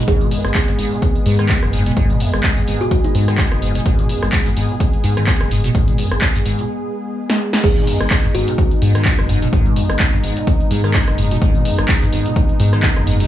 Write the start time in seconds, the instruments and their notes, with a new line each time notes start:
Already playing: analog synth pad G#3 B3
0.08 analog synth bass G#1, acid bass G#2, kalimba G#4, analog synth pad G#4, kick, closed hi-hat, shaker
0.21 acid bass B2, closed hi-hat
0.31 acid bass F#2, open hi-hat, shaker
0.45 analog synth bass G#1, cross-stick, shaker
0.54 kick, clap, closed hi-hat, shaker
0.68 acid bass G#2, closed hi-hat
0.79 analog synth bass G#1, acid bass G#2, open hi-hat, shaker
0.92 acid bass B2, shaker
1.02 kick, closed hi-hat, shaker
1.15 closed hi-hat
1.26 acid bass G#2, analog synth bass G#2, open hi-hat, shaker
1.38 acid bass D#3, cross-stick, closed hi-hat, shaker
1.49 acid bass G#2, kick, clap, closed hi-hat, shaker
1.63 analog synth bass F#1, cross-stick
1.73 acid bass G#2, open hi-hat, shaker
1.86 acid bass B2, closed hi-hat, shaker
1.97 analog synth bass G#1, acid bass G#2, kick, closed hi-hat, shaker
2.10 acid bass B2, closed hi-hat
2.20 acid bass F#2, open hi-hat, shaker
2.34 analog synth bass G#1, cross-stick, shaker
2.43 kick, clap, closed hi-hat, shaker
2.57 acid bass G#2, closed hi-hat
2.67 analog synth bass G#1, acid bass G#2, open hi-hat, shaker
2.80 acid bass B2, kalimba F#4, shaker
2.91 kalimba F#4, kick, closed hi-hat, shaker
3.04 kalimba D#4, closed hi-hat
3.15 acid bass G#2, analog synth bass G#2, open hi-hat, shaker
3.28 acid bass D#3, cross-stick, closed hi-hat, shaker
3.38 acid bass G#2, kick, clap, closed hi-hat, shaker
3.52 analog synth bass F#1, cross-stick
3.62 acid bass G#2, open hi-hat, shaker
3.75 acid bass B2, closed hi-hat, shaker
3.86 analog synth bass G#1, acid bass G#2, kick, closed hi-hat, shaker
3.99 acid bass B2, closed hi-hat
4.09 acid bass F#2, open hi-hat, shaker
4.22 analog synth bass G#1, cross-stick, shaker
4.32 kick, clap, closed hi-hat, shaker
4.46 acid bass G#2, closed hi-hat
4.56 analog synth bass G#1, acid bass G#2, open hi-hat, shaker
4.69 acid bass B2, shaker
4.80 kick, closed hi-hat, shaker
4.93 closed hi-hat
5.04 analog synth bass G#2, acid bass G#2, open hi-hat, shaker
5.17 acid bass D#3, cross-stick, closed hi-hat, shaker
5.27 acid bass G#2, kick, clap, closed hi-hat, shaker
5.41 analog synth bass F#1, cross-stick
5.51 acid bass G#2, open hi-hat, shaker
5.64 acid bass B2, closed hi-hat, shaker
5.75 analog synth bass G#1, acid bass G#2, kick, closed hi-hat, shaker
5.88 acid bass B2, closed hi-hat
5.98 acid bass F#2, open hi-hat, shaker
6.12 analog synth bass G#1, cross-stick, closed hi-hat, shaker
6.21 kick, clap, closed hi-hat, shaker
6.35 acid bass G#2, closed hi-hat
6.46 analog synth bass G#1, acid bass G#2, open hi-hat, shaker
6.59 acid bass B2, closed hi-hat, shaker
7.30 snare
7.53 snare
7.64 analog synth bass G#1, acid bass G#2, analog synth pad G#3 B3 D#4, kalimba G#4, kick, closed hi-hat, crash
7.77 acid bass B2, closed hi-hat
7.87 acid bass F#2, open hi-hat
8.01 analog synth bass G#1, cross-stick, closed hi-hat
8.10 kick, clap, closed hi-hat
8.24 acid bass G#2, closed hi-hat
8.35 analog synth bass G#1, acid bass G#2, kalimba F#4, open hi-hat
8.48 acid bass B2, closed hi-hat
8.58 kick, closed hi-hat
8.71 closed hi-hat
8.82 acid bass G#2, analog synth bass G#2, open hi-hat
8.95 acid bass D#3, cross-stick, closed hi-hat
9.05 acid bass G#2, kick, clap, closed hi-hat
9.19 analog synth bass F#1, cross-stick, closed hi-hat
9.29 acid bass G#2, open hi-hat
9.42 acid bass B2, closed hi-hat
9.53 analog synth bass G#1, acid bass G#2, kick, closed hi-hat
9.66 acid bass B2, closed hi-hat
9.76 acid bass F#2, open hi-hat
9.90 analog synth bass G#1, cross-stick, closed hi-hat
9.99 kick, clap, closed hi-hat
10.13 acid bass G#2, closed hi-hat
10.24 analog synth bass G#1, acid bass G#2, open hi-hat
10.37 acid bass B2, closed hi-hat
10.47 kick, closed hi-hat
10.60 closed hi-hat
10.71 acid bass G#2, analog synth bass G#2, open hi-hat
10.84 acid bass D#3, cross-stick, closed hi-hat
10.94 acid bass G#2, kick, clap, closed hi-hat
11.08 analog synth bass F#1, cross-stick, closed hi-hat
11.18 acid bass G#2, open hi-hat
11.31 acid bass B2, closed hi-hat
11.42 analog synth bass G#1, acid bass G#2, kick, closed hi-hat
11.55 acid bass B2, closed hi-hat
11.65 acid bass F#2, open hi-hat
11.78 analog synth bass G#1, cross-stick, closed hi-hat
11.88 kick, clap, closed hi-hat
12.02 acid bass G#2, closed hi-hat
12.13 analog synth bass G#1, acid bass G#2, open hi-hat
12.26 acid bass B2, closed hi-hat
12.36 kick, closed hi-hat
12.49 closed hi-hat
12.60 analog synth bass G#2, acid bass G#2, open hi-hat
12.73 acid bass D#3, cross-stick, closed hi-hat
12.83 acid bass G#2, kick, clap, closed hi-hat
12.97 analog synth bass F#1, cross-stick, closed hi-hat
13.07 acid bass G#2, open hi-hat
13.20 acid bass B2, closed hi-hat